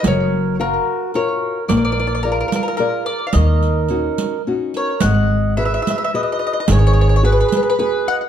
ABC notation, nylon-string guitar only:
X:1
M:3/4
L:1/8
Q:"Swing" 1/4=109
K:Ebm
V:1 name="Nylon-string guitar"
G,2 [GBf]2 [FGB]2 | B,2 [AB=d]2 [ABd]2 | E,2 [DEG]2 [DEG]2 | [K:G#m] G,2 [FGB]2 [FGB]2 |
D,2 [FGB]2 [FGB]2 |]